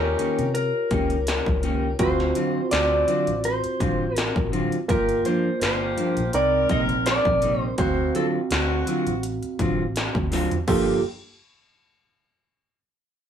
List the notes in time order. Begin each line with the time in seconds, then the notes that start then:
Already playing: D#2 C#4 D#4 F4 G4 A#4 C#5
0.19 D#3 A#3 C#4 G4, closed hi-hat
0.39 C3, closed hi-hat
0.54 A#4, closed hi-hat
0.91 C#2 D#3 A#3 C#4 G4, kick, closed hi-hat
1.10 closed hi-hat
1.27 snare, closed hi-hat
1.46 C#2, kick
1.63 D#3 A#3 C#4 G4, closed hi-hat
1.99 D2 F#3 C4 F4 F#4 C5 F5, kick, closed hi-hat
2.20 snare
2.35 D3 F#3 C4 F4, closed hi-hat
2.71 D2 F#3 C4 D5, snare, closed hi-hat
3.07 D3 F#3 C4 F4, closed hi-hat
3.27 A1, closed hi-hat
3.44 C5, closed hi-hat
3.64 muted fingered electric bass stroke, closed hi-hat
3.80 A1 D3 F#3 C4 F4, kick, closed hi-hat
4.16 A#4, snare, closed hi-hat
4.36 A1, kick
4.52 D3 F#3 C4 F4, closed hi-hat
4.72 closed hi-hat
4.88 G1 A#3 F4 G4 A#4, kick, closed hi-hat
5.09 closed hi-hat
5.25 G2 F3 A#3 D4 C5, closed hi-hat
5.61 G1 A#3 F4 G4 C5, snare, closed hi-hat
5.97 G2 F3 A#3 D4, closed hi-hat
6.17 A#1, closed hi-hat
6.33 C2 C4 D#4 A#4 D5, closed hi-hat
6.69 A#1 C3 G3 A#3 D#4 D#5, kick, closed hi-hat
6.89 closed hi-hat
7.06 D5, snare, closed hi-hat
7.25 A#1, kick
7.42 C3 G3 A#3 D#4, closed hi-hat
7.61 C5
7.78 D2 C4 F#4 C5 F5, kick, closed hi-hat
8.14 D3 F#3 C4 F4 A4, closed hi-hat
8.51 D2 C4 F#4, snare, closed hi-hat
8.87 D3 F#3 C4 F4, closed hi-hat
9.07 A1, closed hi-hat
9.23 closed hi-hat
9.43 muted fingered electric bass stroke, closed hi-hat
9.59 A1 D3 F#3 C4 F4, kick, closed hi-hat
9.96 snare, closed hi-hat
10.15 D2, kick
10.31 D3 F#3 C4 F4, snare, open hi-hat
10.51 closed hi-hat, floor tom
10.67 G1 G2 F3 A#3 D4 F4 G4 A4, kick, crash